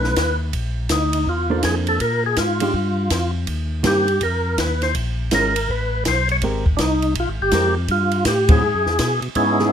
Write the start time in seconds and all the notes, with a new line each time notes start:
Already playing: B1 A3 C#4 D#4 B4
0.04 snare
0.16 D#2, kick, snare, hi-hat pedal, ride
0.53 A#1, kick, ride
0.89 D2 D#4, kick, snare, hi-hat pedal, ride
1.13 ride
1.27 E2 F4, kick
1.50 A#3 D4 A4 C5
1.63 F2 G#4, kick, snare, hi-hat pedal, ride
1.87 A4, ride
2.00 A#2 A#4, kick, ride
2.26 G#4
2.37 G#2 F4, kick, snare, hi-hat pedal, ride
2.60 G#3 D4 G4, ride
2.74 G2, kick
3.10 F2, kick, snare, hi-hat pedal, ride
3.47 D#2, kick, ride
3.83 G2 D#3 A#3 C4 G4, kick, snare, hi-hat pedal, ride
4.08 ride
4.21 F2 A#4, kick, ride
4.58 D#2 B4, kick, snare, hi-hat pedal, ride
4.82 C5, snare, ride
4.95 A#1, kick, ride
5.31 G#1 G#3 C#4 F4 A#4, kick, snare, hi-hat pedal, ride
5.56 ride
5.69 A1 B4, kick
6.05 B1 C5, kick, snare, hi-hat pedal, ride
6.29 C#5, ride
6.42 G#1 G#3 C4 G4 A#4, kick, ride
6.66 kick
6.77 C2 D4, kick, snare, hi-hat pedal, ride
6.81 D#4
7.02 ride
7.15 A#1, kick, ride
7.20 F4
7.27 G#1
7.41 G1 G4
7.51 F2 G#3 C4 G4 A#4, kick, snare, hi-hat pedal, ride
7.88 G2 F4, kick, ride
8.11 ride
8.25 A2 G4, kick, snare, hi-hat pedal, ride
8.49 F#3 C4 E4 G#4, kick, ride
8.61 G#2
8.74 F#2
8.86 E2, snare
8.98 B2, kick, snare, hi-hat pedal, ride
9.21 B2, ride
9.35 G#2 B3 C#4 D#4 E4 G#4, kick, ride
9.59 G#3 G#4, snare